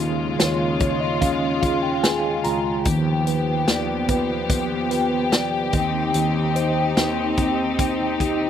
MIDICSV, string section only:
0, 0, Header, 1, 2, 480
1, 0, Start_track
1, 0, Tempo, 821918
1, 1672, Time_signature, 4, 2, 24, 8
1, 4963, End_track
2, 0, Start_track
2, 0, Title_t, "String section"
2, 0, Program_c, 0, 48
2, 0, Note_on_c, 0, 49, 73
2, 0, Note_on_c, 0, 56, 71
2, 0, Note_on_c, 0, 65, 80
2, 1652, Note_off_c, 0, 56, 0
2, 1653, Note_off_c, 0, 65, 0
2, 1656, Note_off_c, 0, 49, 0
2, 1672, Note_on_c, 0, 59, 64
2, 1675, Note_on_c, 0, 67, 79
2, 1676, Note_on_c, 0, 53, 71
2, 3335, Note_off_c, 0, 59, 0
2, 3337, Note_off_c, 0, 53, 0
2, 3358, Note_on_c, 0, 60, 70
2, 3359, Note_on_c, 0, 63, 74
2, 4963, Note_off_c, 0, 60, 0
2, 4963, Note_off_c, 0, 63, 0
2, 4963, Note_off_c, 0, 67, 0
2, 4963, End_track
0, 0, End_of_file